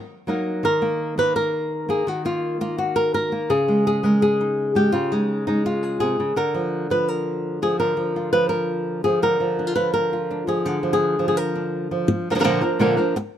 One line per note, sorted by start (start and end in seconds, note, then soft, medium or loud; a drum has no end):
0.27 0.62 F#3 medium
0.27 0.63 A#3 medium
0.27 0.63 D#4 medium
0.27 0.64 A#4 medium
0.63 2.05 D#3 medium
0.63 1.18 A#4 loud
0.82 1.17 A#3 medium
1.18 1.87 A#3 medium
1.18 1.35 B4 loud
1.36 2.25 A#4 medium
1.89 2.05 A#3 medium
1.89 2.08 G#4 medium
2.07 3.48 D#3 medium
2.07 2.25 F#4 medium
2.25 2.60 A#3 medium
2.25 2.60 F4 medium
2.61 3.31 A#3 medium
2.61 2.78 F4 medium
2.78 3.32 F#4 medium
2.96 3.13 A#4 loud
3.14 3.50 A#4 loud
3.32 3.48 A#3 medium
3.50 4.91 C#3 medium
3.50 3.86 G#4 loud
3.68 4.03 G#3 medium
3.87 4.21 G#4 medium
4.03 4.74 G#3 medium
4.03 4.58 A#4 loud
4.22 4.92 G#4 medium
4.41 4.92 D#4 soft
4.75 4.91 G#3 medium
4.75 5.30 G4 medium
4.92 6.01 C#3 medium
4.92 5.12 F4 medium
5.12 5.47 G#3 medium
5.12 5.46 D#4 medium
5.47 6.35 G#3 medium
5.47 5.65 D#4 medium
5.66 6.19 F4 medium
5.83 5.99 G#4 medium
6.00 6.19 C3 medium
6.00 6.37 G#4 medium
6.20 6.36 C#3 medium
6.36 7.80 D3 medium
6.36 6.91 A#4 loud
6.54 6.90 F3 medium
6.90 7.62 F3 medium
6.90 7.08 B4 medium
7.08 7.62 A#4 medium
7.62 7.97 F3 medium
7.62 7.79 G#4 medium
7.80 9.22 D3 medium
7.80 8.32 A#4 medium
7.97 8.33 F3 medium
8.16 9.59 F4 soft
8.33 9.04 F3 medium
8.33 8.49 B4 loud
8.49 9.04 A#4 medium
9.04 9.40 F3 medium
9.04 9.23 G#4 medium
9.22 10.64 D3 medium
9.22 9.75 A#4 medium
9.40 9.76 F3 medium
9.59 9.67 D4 soft
9.67 10.12 F4 soft
9.76 10.47 F3 medium
9.76 9.93 B4 loud
9.94 10.48 A#4 loud
10.13 10.66 F4 soft
10.31 10.96 D4 soft
10.47 10.82 F3 medium
10.47 10.92 G#4 medium
10.65 12.06 D3 medium
10.65 10.93 F#4 medium
10.83 11.18 F3 medium
10.93 11.27 G#4 medium
11.19 11.90 F3 medium
11.28 11.37 G#4 medium
11.37 12.09 A#4 medium
11.55 12.30 D4 soft
11.91 12.29 F3 medium
12.08 muted nylon-string guitar stroke medium
12.30 12.34 D3 medium
12.30 12.34 F3 medium
12.30 12.34 A#3 medium
12.30 12.35 D4 medium
12.30 12.35 A#4 medium
12.35 12.38 D3 medium
12.35 12.38 F3 medium
12.35 12.39 A#3 medium
12.35 12.39 D4 medium
12.35 12.40 A#4 medium
12.39 12.43 D3 medium
12.39 12.43 F3 medium
12.39 12.43 A#3 medium
12.39 12.43 D4 medium
12.39 12.43 A#4 medium
12.44 12.61 A#2 medium
12.44 12.62 D3 medium
12.44 12.62 F3 medium
12.44 12.61 A#3 medium
12.44 12.61 D4 medium
12.44 12.60 A#4 loud
12.61 12.79 F3 soft
12.61 12.80 A#3 medium
12.61 12.79 D4 medium
12.61 12.79 A#4 medium
12.79 12.97 A#2 medium
12.79 12.97 D3 medium
12.79 12.98 F3 medium
12.79 12.97 A#3 loud
12.79 12.96 D4 medium
12.79 12.96 A#4 medium
12.97 13.15 F3 soft
12.97 13.15 A#3 medium
12.97 13.15 D4 medium
12.97 13.15 A#4 medium
13.16 muted nylon-string guitar stroke medium